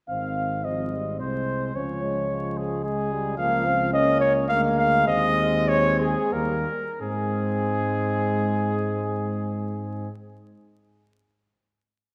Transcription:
0.09 G#1 D#3 C4 F5
0.64 F3 C4 D#5
0.93 G3
1.20 C2 G#3 C5
1.75 C#2 F3 C#4 C#5
2.03 G#3
2.31 F3
2.57 G#4
2.84 G#3 G#4
3.12 G3
3.37 C#2 F3 A#3 F5
3.65 C4
3.93 A#3 C#4 D#5
4.20 C#5
4.48 D2 G#3 A#3 F5
4.77 F5
5.07 D#2 C4 D#5
5.68 C#5
6.00 G#4
6.33 D#2 G3 A#3 A#4
7.01 G#2 G#3 C4 G#4

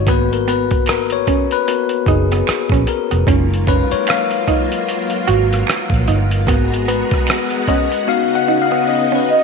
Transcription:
0.07 G#1 A#3 B3 F#4 B4, kick, closed hi-hat, shaker
0.31 A#4, closed hi-hat, shaker
0.48 B3 B4, closed hi-hat, shaker
0.70 kick, closed hi-hat, shaker
0.86 A#4, finger snap, cross-stick, closed hi-hat, shaker
1.10 C#5, closed hi-hat, shaker
1.27 C#4, kick, closed hi-hat
1.50 B4, closed hi-hat, shaker
1.67 B3 F#4 A#4, muted clean electric guitar stroke, closed hi-hat, shaker
1.89 closed hi-hat, shaker
2.06 F#1 D#4 G#4, kick, closed hi-hat, shaker
2.31 B3, cross-stick, closed hi-hat, shaker
2.47 finger snap, muted fingered electric bass stroke, cross-stick, closed hi-hat, shaker
2.70 A#1 C#4, kick, closed hi-hat, shaker
2.87 A#4, muted clean electric guitar stroke, closed hi-hat, shaker
3.11 F1 B3, closed hi-hat, shaker
3.26 F#1 F#3 G#3 A#3 C#4 D#4 F4, kick, closed hi-hat, shaker
3.51 closed hi-hat, shaker
3.67 C#4 B4, kick, closed hi-hat, shaker
3.90 C#5, muted fingered electric bass stroke, closed hi-hat, shaker
4.07 F5, finger snap, cross-stick, closed hi-hat, shaker
4.31 closed hi-hat, shaker
4.48 D#4, kick, closed hi-hat
4.70 closed hi-hat, shaker
4.87 closed hi-hat, shaker
5.10 closed hi-hat, shaker
5.27 G#1 F#4, closed hi-hat, shaker
5.50 cross-stick, closed hi-hat, shaker
5.67 finger snap, cross-stick, closed hi-hat, shaker
5.90 A#1, kick, shaker
5.94 closed hi-hat
6.07 G1 D#4, closed hi-hat, shaker
6.30 closed hi-hat, shaker
6.47 G#1 G#3 B3 F#4 A#4 A#5, kick, closed hi-hat, shaker
6.71 closed hi-hat, shaker
6.87 B3 B4, closed hi-hat, shaker
7.10 muted fingered electric bass stroke, kick, cross-stick, closed hi-hat, shaker
7.27 finger snap, cross-stick, closed hi-hat, shaker
7.50 closed hi-hat, shaker
7.68 C#4 D#5, kick, closed hi-hat, shaker
7.90 closed hi-hat, shaker
8.07 C#3 B3 D#4 F#4 F5, muted clean electric guitar stroke
8.35 F#5
8.48 D#4
8.62 F5
8.72 B3
8.89 D#5
9.12 C#4 B4
9.29 D#5, muted clean electric guitar stroke

